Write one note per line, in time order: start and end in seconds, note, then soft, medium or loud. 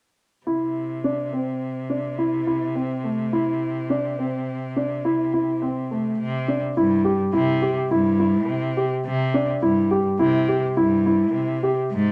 0.46 6.16 C3 soft
0.46 0.95 E4 soft
1.04 1.28 D4 medium
1.33 1.81 C4 soft
1.90 2.14 D4 soft
2.18 2.43 E4 medium
2.47 2.71 E4 medium
2.75 3.00 C4 soft
3.04 3.28 A3 soft
3.33 3.81 E4 medium
3.90 4.14 D4 medium
4.19 4.67 C4 soft
4.76 5.01 D4 soft
5.05 5.29 E4 medium
5.34 5.58 E4 medium
5.62 5.86 C4 medium
5.91 6.15 A3 soft
6.19 6.62 C3 medium
6.48 6.72 D4 soft
6.77 7.20 G2 medium
6.77 7.01 E4 medium
7.05 7.29 G4 medium
7.33 7.77 C3 medium
7.33 7.58 E4 medium
7.62 7.86 G4 medium
7.91 8.50 G2 medium
7.91 8.15 E4 medium
8.20 8.68 E4 medium
8.48 8.92 C3 medium
8.77 9.01 G4 medium
9.05 9.49 C3 medium
9.34 9.58 D4 medium
9.62 10.06 G2 medium
9.62 9.87 E4 medium
9.91 10.15 G4 medium
10.19 10.63 C3 medium
10.19 10.44 E4 medium
10.48 10.73 G4 medium
10.77 11.35 G2 medium
10.77 11.01 E4 medium
11.06 11.54 E4 medium
11.34 11.77 C3 medium
11.63 11.87 G4 medium
11.91 12.12 G#2 medium